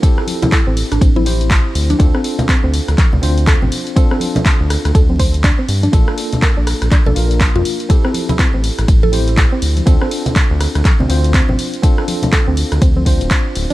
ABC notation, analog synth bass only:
X:1
M:4/4
L:1/16
Q:"Swing 16ths" 1/4=122
K:Dm
V:1 name="Analog synth bass" clef=bass
z4 z A,,, z A,,, A,,,4- A,,, z D,, z | D,, z4 D,, z D,, z D,, D,,3 A,,, z2 | z4 z D,, z D,, D,,4- D,, z G,, z | B,,, z4 B,,, z B,,, z B,,, B,,,3 F,, z2 |
z4 z A,,, z A,,, A,,,4- A,,, z D,, z | D,, z4 D,, z D,, z D,, D,,3 A,,, z2 | z4 z D,, z D,, D,,3 D,,, z2 D,,, z |]